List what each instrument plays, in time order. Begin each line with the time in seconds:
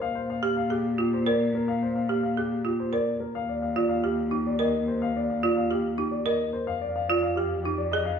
0.01 cello A#2, grand piano F5
0.15 grand piano C5
0.30 grand piano F5
0.43 marimba G4
0.57 grand piano F5
0.70 grand piano G4, marimba G#4
0.98 marimba F4, grand piano G4
1.13 grand piano C5
1.26 marimba A#4, grand piano D5
1.55 grand piano A#4
1.68 grand piano F5
1.83 grand piano C5
1.96 grand piano F5
2.09 marimba G4
2.23 grand piano F5
2.37 grand piano G4, marimba G#4
2.65 marimba F4, grand piano G4
2.80 grand piano C5
2.93 marimba A#4, grand piano D5
3.20 grand piano A#4
3.35 cello D#2, grand piano F5
3.49 grand piano D5
3.62 grand piano F5
3.76 marimba F4, grand piano D5
3.89 grand piano F5
4.04 marimba G4, grand piano G4
4.31 marimba D#4, grand piano G4
4.47 grand piano D5
4.59 marimba A#4, grand piano D#5
4.88 grand piano C5
5.02 grand piano F5
5.17 grand piano D5
5.30 grand piano F5
5.43 marimba F4, grand piano D5
5.57 grand piano F5
5.71 marimba G4, grand piano G4
5.98 marimba D#4, grand piano G4
6.11 grand piano D5
6.26 marimba A#4, grand piano D#5
6.53 grand piano C5
6.67 cello F2, grand piano F5
6.81 grand piano D5
6.96 grand piano F5
7.09 marimba F4, grand piano D5
7.23 grand piano F5
7.36 grand piano G4, marimba G4
7.63 marimba D#4, grand piano G4
7.78 grand piano D5
7.92 marimba G#4, grand piano D#5
8.05 grand piano F5